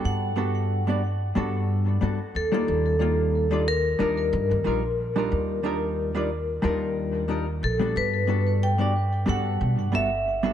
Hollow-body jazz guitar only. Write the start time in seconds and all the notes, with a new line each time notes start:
Already playing: G3 B3 D4 F#4 A4
0.36 G3 B3 D4 F#4 A4
0.87 G3 B3 D4 F#4 D5
1.35 G3 B3 D4 F#4 A4
2.01 G3 B3 D4 F#4 A4
2.52 G3 A#3 D4 D#4 F4
2.99 G3 A#3 D4 D#4 F4
3.51 G3 D4 D#4 F4 D5
3.99 G3 D4 D#4 F4 A#4
4.64 G3 D4 D#4 F4 A#4
5.16 G3 D4 D#4 F4 A#4
5.63 G3 D4 D#4 F4 A#4
6.15 G3 D4 D#4 F4 D5
6.62 G3 D4 D#4 F4 A#4
7.28 G3 D4 D#4 F4 A#4
7.79 G3 B3 D4 F#4 A4
8.27 G3 B3 D4 F#4 A4
8.78 G3 B3 D4 F#4 D5
9.26 G3 B3 D4 F#4 A4
9.92 G3 B3 D4 F#4 A4
10.43 G3 B3 D4 F#4 A4